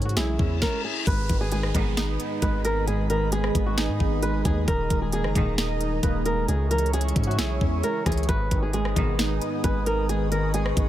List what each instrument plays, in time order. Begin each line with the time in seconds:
Already playing: 808-style bass G#2, synth keys C#3 E3 G#3 C#4
0.02 nylon-string guitar F#4, closed hi-hat
0.09 closed hi-hat
0.17 808-style bass B1, synth keys E4, nylon-string guitar G#4, snare, closed hi-hat, reverse cymbal
0.39 808-style bass E2, synth keys C#4, kick
0.62 nylon-string guitar A#4, kick, snare
0.84 nylon-string guitar G#4
1.07 808-style bass G#1, synth keys G#2, analog synth pad G#4 B4 D#5 B5, nylon-string guitar B4, kick, closed hi-hat, downlifter
1.29 808-style bass G#1, synth keys D#3, kick, closed hi-hat
1.41 nylon-string guitar G#4
1.52 synth keys G#3, nylon-string guitar G#4, closed hi-hat
1.63 cross-stick
1.74 808-style bass G#1, string section B1 G#2 D#3, synth keys B3, kick, closed hi-hat
1.97 synth keys D#4, snare, closed hi-hat
2.19 synth keys B3, closed hi-hat
2.42 808-style bass G#1, synth keys G#3, nylon-string guitar B4, kick, closed hi-hat
2.65 synth keys D#3, nylon-string guitar A#4, closed hi-hat
2.87 synth keys G#2, nylon-string guitar G#4, closed hi-hat
3.10 synth keys D#3, nylon-string guitar A#4, closed hi-hat
3.32 synth keys G#3, nylon-string guitar G#4, closed hi-hat
3.44 cross-stick
3.55 808-style bass G#1, synth keys B3, kick, closed hi-hat
3.66 nylon-string guitar F#4
3.77 synth keys D#4, nylon-string guitar G#4, snare, closed hi-hat
3.89 808-style bass G#2
4.00 808-style bass G#1, synth keys B3, kick
4.22 synth keys G#3, nylon-string guitar B4, closed hi-hat
4.45 808-style bass D#2, synth keys D#3, nylon-string guitar G#4, kick, closed hi-hat
4.68 808-style bass D#1, synth keys D#3, analog synth pad A#4 A#5, nylon-string guitar A#4, kick, closed hi-hat
4.90 808-style bass D#1, synth keys G#3, kick, closed hi-hat
5.02 nylon-string guitar G#4
5.12 synth keys A#3, nylon-string guitar G#4, closed hi-hat
5.24 808-style bass F#1, cross-stick
5.35 808-style bass D#1, string section A#1 G#2 D#3, synth keys D#4, kick, closed hi-hat
5.58 synth keys D#5, snare, closed hi-hat
5.81 synth keys D#4, closed hi-hat
6.03 808-style bass D#1, synth keys A#3, nylon-string guitar B4, kick, closed hi-hat
6.26 synth keys G#3, nylon-string guitar A#4, closed hi-hat
6.48 808-style bass C#2, synth keys C#3, nylon-string guitar G#4, analog synth pad G#4 C#5 E5 C#6, closed hi-hat
6.71 synth keys E3, nylon-string guitar A#4, closed hi-hat
6.78 closed hi-hat
6.86 closed hi-hat
6.93 synth keys G#3, nylon-string guitar G#4, closed hi-hat
7.01 closed hi-hat
7.08 closed hi-hat
7.16 808-style bass G#2, synth keys C#4, kick, closed hi-hat
7.24 nylon-string guitar F#4, closed hi-hat
7.31 closed hi-hat
7.38 808-style bass B1, synth keys E4, nylon-string guitar G#4, snare, closed hi-hat
7.61 808-style bass E2, synth keys C#4, kick
7.83 synth keys G#3, nylon-string guitar A#4, closed hi-hat
8.06 808-style bass C#2, synth keys E3, nylon-string guitar G#4, kick, cross-stick, closed hi-hat
8.12 closed hi-hat
8.17 closed hi-hat
8.23 closed hi-hat
8.28 808-style bass G#1, synth keys G#2, analog synth pad B4 D#5 G#5 D#6, nylon-string guitar B4, kick, closed hi-hat
8.51 808-style bass G#1, synth keys D#3, kick, closed hi-hat
8.62 nylon-string guitar G#4
8.73 synth keys G#3, nylon-string guitar G#4, closed hi-hat
8.85 cross-stick
8.96 808-style bass G#1, string section B1 G#2 D#3, synth keys B3, kick, closed hi-hat
9.19 synth keys D#4, snare, closed hi-hat
9.41 synth keys B3, closed hi-hat
9.64 808-style bass G#1, synth keys G#3, nylon-string guitar B4, kick, closed hi-hat
9.86 synth keys D#3, nylon-string guitar A#4, closed hi-hat
10.09 synth keys G#2, nylon-string guitar G#4, analog synth pad C#6, closed hi-hat
10.32 synth keys D#3, nylon-string guitar A#4, closed hi-hat
10.54 synth keys G#3, nylon-string guitar G#4, closed hi-hat
10.66 cross-stick
10.77 808-style bass G#1, synth keys B3, kick, closed hi-hat